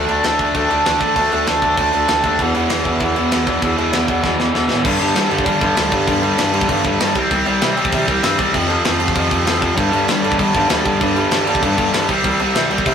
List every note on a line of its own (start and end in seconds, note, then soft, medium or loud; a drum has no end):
0.09 0.22 D2 medium
0.09 0.24 D3 medium
0.09 0.24 A3 medium
0.09 0.25 D4 medium
0.09 crash medium
0.23 0.37 D2 loud
0.23 0.39 D3 medium
0.23 0.39 A3 medium
0.23 0.38 D4 loud
0.23 snare loud
0.23 crash medium
0.39 0.53 D2 medium
0.39 0.53 D3 medium
0.39 0.54 A3 medium
0.39 0.54 D4 medium
0.39 kick medium
0.39 crash medium
0.55 0.68 D2 loud
0.55 0.70 D3 medium
0.55 0.69 A3 loud
0.55 0.69 D4 loud
0.55 kick medium
0.55 crash medium
0.70 0.84 D2 medium
0.70 0.84 D3 medium
0.70 0.84 A3 medium
0.70 0.85 D4 loud
0.70 crash medium
0.85 0.99 D2 loud
0.85 1.00 D3 medium
0.85 1.00 A3 medium
0.85 0.99 D4 loud
0.85 snare loud
0.85 crash medium
1.01 1.14 D3 medium
1.01 1.15 A3 medium
1.01 1.15 D4 medium
1.01 kick medium
1.01 crash medium
1.16 1.30 D2 loud
1.16 1.31 D3 medium
1.16 1.31 A3 medium
1.16 1.30 D4 medium
1.16 kick medium
1.16 crash medium
1.31 1.45 D2 loud
1.31 1.45 D3 medium
1.31 1.46 A3 loud
1.31 1.46 D4 medium
1.31 crash medium
1.47 1.61 D2 medium
1.47 1.62 D3 medium
1.47 1.62 A3 loud
1.47 1.61 D4 medium
1.47 snare loud
1.47 crash medium
1.62 1.76 D2 medium
1.62 1.75 D3 medium
1.62 1.76 A3 medium
1.62 1.76 D4 medium
1.62 kick medium
1.62 crash medium
1.77 1.91 D2 medium
1.77 1.92 D3 medium
1.77 1.92 A3 loud
1.77 1.91 D4 loud
1.77 kick medium
1.77 crash medium
1.92 2.07 D2 loud
1.92 2.07 D3 medium
1.92 2.07 A3 medium
1.92 2.08 D4 medium
1.92 crash medium
2.08 2.22 D2 loud
2.08 2.24 D3 medium
2.08 2.23 A3 medium
2.08 2.22 D4 medium
2.08 snare loud
2.08 crash medium
2.24 2.37 D#2 medium
2.24 2.39 D3 medium
2.24 2.39 A3 medium
2.24 2.38 D4 medium
2.24 kick medium
2.24 crash medium
2.39 2.55 E2 medium
2.39 2.53 E2 loud
2.39 2.53 B2 loud
2.39 2.53 E3 medium
2.39 kick medium
2.39 crash medium
2.54 2.68 E2 medium
2.54 2.68 E2 loud
2.54 2.68 B2 medium
2.54 2.69 E3 loud
2.54 crash medium
2.68 2.84 E2 medium
2.68 2.83 B2 medium
2.68 2.83 E3 loud
2.68 snare loud
2.68 crash medium
2.84 2.99 E2 medium
2.84 2.99 E2 loud
2.84 3.00 B2 medium
2.84 3.00 E3 loud
2.84 kick medium
2.84 crash medium
3.00 3.16 E2 loud
3.00 3.14 E2 loud
3.00 3.15 B2 medium
3.00 3.14 E3 loud
3.00 kick medium
3.00 crash medium
3.16 3.30 E2 medium
3.16 3.30 B2 medium
3.16 3.31 E3 medium
3.16 crash medium
3.31 3.46 E2 medium
3.31 3.46 E2 loud
3.31 3.46 B2 medium
3.31 3.45 E3 medium
3.31 snare loud
3.31 crash medium
3.47 3.60 E2 medium
3.47 3.60 B2 medium
3.47 3.61 E3 medium
3.47 kick medium
3.47 crash medium
3.61 3.76 E2 medium
3.61 3.76 E2 loud
3.61 3.76 B2 loud
3.61 3.76 E3 loud
3.61 kick loud
3.61 crash medium
3.77 3.91 E2 medium
3.77 3.91 B2 medium
3.77 3.92 E3 loud
3.77 crash medium
3.92 4.07 E2 medium
3.92 4.07 B2 loud
3.92 4.06 E3 medium
3.92 snare loud
3.92 crash medium
4.07 4.22 E2 medium
4.07 4.21 E2 medium
4.07 4.21 B2 medium
4.07 4.21 E3 loud
4.07 kick medium
4.07 crash medium
4.22 4.38 E2 medium
4.22 4.37 E2 loud
4.22 4.37 B2 medium
4.22 4.37 E3 loud
4.22 kick medium
4.22 snare medium
4.38 4.52 E2 medium
4.38 4.53 E2 medium
4.38 4.52 B2 medium
4.38 4.53 E3 medium
4.38 snare medium
4.53 4.69 E2 medium
4.53 4.68 E2 medium
4.53 4.68 B2 medium
4.53 4.67 E3 medium
4.53 snare medium
4.68 4.83 E2 medium
4.68 4.84 A2 medium
4.68 4.83 B2 medium
4.68 4.84 E3 medium
4.68 snare medium
4.83 4.99 G2 loud
4.83 4.98 G2 loud
4.83 4.98 D3 loud
4.83 4.99 G3 loud
4.83 kick loud
4.83 crash loud
4.83 crash medium
4.99 5.14 G2 medium
4.99 5.13 G2 medium
4.99 5.14 D3 loud
4.99 5.16 G3 loud
4.99 crash medium
5.15 5.29 G2 loud
5.15 5.29 D3 loud
5.15 5.28 G3 loud
5.15 5.29 G3 loud
5.15 snare loud
5.15 crash medium
5.30 5.43 G2 medium
5.30 5.44 D3 medium
5.30 5.45 G3 loud
5.30 crash medium
5.38 kick loud
5.45 5.61 G2 medium
5.45 5.60 D3 loud
5.45 5.61 G3 loud
5.45 5.59 G3 loud
5.45 kick loud
5.45 crash medium
5.61 5.74 G2 loud
5.61 5.74 G2 medium
5.61 5.75 D3 loud
5.61 5.76 G3 loud
5.61 kick loud
5.61 crash medium
5.76 5.90 D2 medium
5.76 5.91 G2 loud
5.76 5.91 D3 loud
5.76 5.91 G3 loud
5.76 snare loud
5.76 crash medium
5.91 6.05 G2 medium
5.91 6.06 D3 medium
5.91 6.07 G3 medium
5.91 kick loud
5.91 crash medium
6.06 6.21 G2 loud
6.06 6.33 G2 loud
6.06 6.21 D3 loud
6.06 6.21 G3 loud
6.06 kick loud
6.06 crash medium
6.22 6.36 G2 medium
6.22 6.37 D3 medium
6.22 6.38 G3 loud
6.22 crash medium
6.37 6.53 G2 loud
6.37 6.64 G2 loud
6.37 6.53 D3 loud
6.37 6.51 G3 loud
6.37 snare loud
6.37 crash medium
6.53 6.66 G2 medium
6.53 6.67 D3 medium
6.53 6.68 G3 medium
6.53 crash medium
6.61 kick medium
6.68 6.84 G2 loud
6.68 6.82 G2 loud
6.68 6.83 D3 loud
6.68 6.83 G3 loud
6.68 kick loud
6.68 crash medium
6.84 6.97 G2 loud
6.84 6.99 G2 medium
6.84 6.99 D3 medium
6.84 7.00 G3 medium
6.84 kick loud
6.84 crash medium
7.00 7.15 G2 loud
7.00 7.13 G2 loud
7.00 7.15 D3 loud
7.00 7.14 G3 loud
7.00 snare loud
7.00 crash medium
7.15 7.28 C2 loud
7.15 7.31 C3 loud
7.15 7.30 G3 loud
7.15 7.30 C4 loud
7.15 kick medium
7.15 crash medium
7.31 7.44 C2 loud
7.31 7.45 C3 loud
7.31 7.45 G3 loud
7.31 7.47 C4 loud
7.31 kick medium
7.31 crash medium
7.46 7.59 C2 loud
7.46 7.61 C3 loud
7.46 7.61 G3 loud
7.46 7.61 C4 loud
7.46 crash medium
7.61 7.75 C3 loud
7.61 7.75 C3 medium
7.61 7.76 G3 loud
7.61 7.76 C4 loud
7.61 snare loud
7.61 crash medium
7.76 7.93 C3 loud
7.76 7.92 G3 medium
7.76 7.91 C4 loud
7.76 crash medium
7.85 kick loud
7.92 8.05 C3 loud
7.92 8.07 C3 medium
7.92 8.07 G3 loud
7.92 8.07 C4 loud
7.92 kick loud
7.92 crash medium
8.08 8.21 C2 loud
8.08 8.23 C3 medium
8.08 8.22 G3 loud
8.08 8.21 C4 loud
8.08 kick medium
8.08 crash medium
8.23 8.37 G2 medium
8.23 8.37 C3 medium
8.23 8.38 G3 medium
8.23 8.38 C4 loud
8.23 snare loud
8.23 crash medium
8.38 8.56 C2 medium
8.38 8.52 C3 medium
8.38 8.53 G3 medium
8.38 8.54 C4 loud
8.38 kick medium
8.38 crash medium
8.54 8.67 F2 loud
8.54 8.79 F2 loud
8.54 8.68 C3 loud
8.54 8.67 F3 loud
8.54 kick medium
8.54 crash medium
8.68 8.83 F2 medium
8.68 8.83 C3 loud
8.68 8.84 F3 loud
8.68 crash medium
8.84 8.99 F2 loud
8.84 9.11 F2 medium
8.84 8.98 C3 loud
8.84 8.98 F3 loud
8.84 snare loud
8.84 crash medium
8.99 9.14 F2 medium
8.99 9.14 C3 medium
8.99 9.15 F3 loud
8.99 crash medium
9.08 kick loud
9.15 9.30 F2 loud
9.15 9.28 F2 loud
9.15 9.29 C3 medium
9.15 9.29 F3 loud
9.15 kick loud
9.15 crash medium
9.30 9.44 F2 loud
9.30 9.44 F2 medium
9.30 9.44 C3 medium
9.30 9.45 F3 loud
9.30 kick medium
9.30 crash medium
9.45 9.61 F2 medium
9.45 9.72 F2 medium
9.45 9.60 C3 loud
9.45 9.59 F3 medium
9.45 snare loud
9.45 crash loud
9.61 9.76 F2 medium
9.61 9.76 C3 medium
9.61 9.76 F3 medium
9.61 kick medium
9.61 crash medium
9.76 9.92 G2 loud
9.76 9.90 G2 loud
9.76 9.91 D3 loud
9.76 9.91 G3 loud
9.76 kick loud
9.76 crash medium
9.92 10.06 G2 medium
9.92 10.06 G2 loud
9.92 10.06 D3 loud
9.92 10.08 G3 loud
9.92 crash medium
10.07 10.22 G2 loud
10.07 10.22 D3 loud
10.07 10.22 G3 loud
10.07 10.21 G3 medium
10.07 snare loud
10.07 crash medium
10.22 10.36 G2 medium
10.22 10.37 D3 medium
10.22 10.38 G3 loud
10.22 crash medium
10.32 kick loud
10.38 10.54 G2 medium
10.38 10.54 D3 medium
10.38 10.54 G3 loud
10.38 10.52 G3 loud
10.38 kick medium
10.38 crash medium
10.54 10.67 G2 loud
10.54 10.67 G2 medium
10.54 10.68 D3 loud
10.54 10.69 G3 loud
10.54 kick medium
10.54 crash medium
10.68 10.83 D2 medium
10.68 10.84 G2 loud
10.68 10.84 D3 loud
10.68 10.84 G3 loud
10.68 snare loud
10.68 crash medium
10.84 10.99 G2 medium
10.84 10.98 G2 medium
10.84 10.99 D3 medium
10.84 11.01 G3 loud
10.84 kick loud
10.84 crash medium
11.00 11.15 G2 loud
11.00 11.26 G2 loud
11.00 11.15 D3 loud
11.00 11.15 G3 loud
11.00 kick medium
11.00 crash medium
11.15 11.30 G2 medium
11.15 11.30 D3 medium
11.15 11.32 G3 loud
11.15 crash medium
11.31 11.46 G2 loud
11.31 11.57 G2 medium
11.31 11.46 D3 loud
11.31 11.45 G3 loud
11.31 snare loud
11.31 crash medium
11.46 11.61 G2 medium
11.46 11.62 D3 medium
11.46 11.62 G3 loud
11.46 crash medium
11.55 kick loud
11.62 11.77 G2 loud
11.62 11.75 G2 loud
11.62 11.76 D3 loud
11.62 11.76 G3 loud
11.62 kick loud
11.62 crash medium
11.77 11.92 G2 medium
11.77 11.91 G2 loud
11.77 11.92 D3 medium
11.77 11.93 G3 loud
11.77 kick medium
11.77 crash medium
11.92 12.05 G2 loud
11.92 12.07 G2 medium
11.92 12.08 D3 loud
11.92 12.08 G3 loud
11.92 snare loud
11.92 crash loud
12.09 12.21 C2 medium
12.09 12.24 C3 medium
12.09 12.24 G3 loud
12.09 12.23 C4 medium
12.09 kick medium
12.09 crash medium
12.24 12.37 C2 loud
12.24 12.39 C3 medium
12.24 12.39 G3 medium
12.24 12.40 C4 loud
12.24 kick loud
12.24 crash medium
12.40 12.52 C2 medium
12.40 12.55 C3 loud
12.40 12.55 G3 loud
12.40 12.54 C4 loud
12.40 crash medium
12.55 12.68 C3 loud
12.55 12.70 C3 loud
12.55 12.71 G3 loud
12.55 12.71 C4 loud
12.55 snare loud
12.55 crash medium
12.71 12.84 C2 loud
12.71 12.86 C3 medium
12.71 12.86 G3 loud
12.71 12.85 C4 loud
12.71 crash medium
12.78 kick loud
12.86 12.95 C3 loud
12.86 12.95 C3 medium
12.86 12.95 G3 loud
12.86 12.95 C4 loud
12.86 kick loud
12.86 crash medium